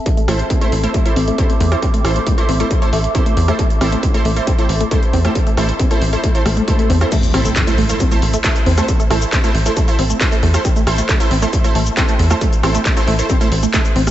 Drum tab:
CC |----------------|----------------|----------------|----------------|
HH |xxoxxxoxxxoxxxox|xxoxxxoxxxoxxxox|xxoxxxoxxxoxxxox|xxoxxxoxxxoxxxox|
SH |----------------|----------------|----------------|----------------|
CP |----------------|----------------|----------------|----------------|
SD |--r------------r|--r------------r|--r------------r|--r-------r----r|
BD |o---o---o---o---|o---o---o---o---|o---o---o---o---|o---o---o---o---|

CC |x---------------|----------------|----------------|----------------|
HH |xxoxxxoxxxoxxxox|xxoxxxoxxxoxxxox|xxoxxxoxxxoxxxox|xxoxxxoxxxoxxxox|
SH |xx-xxx-xxx-xxx-x|xx-xxx-xxx-xxx-x|xx-xxx-xxx-xxx-x|xx-xxx-xxx-xxx-x|
CP |----x-------x---|----x-------x---|----x-------x---|----x-------x---|
SD |--r------------r|--r------------r|--r------------r|--r------------r|
BD |o---o---o---o---|o---o---o---o---|o---o---o---o---|o---o---o---o---|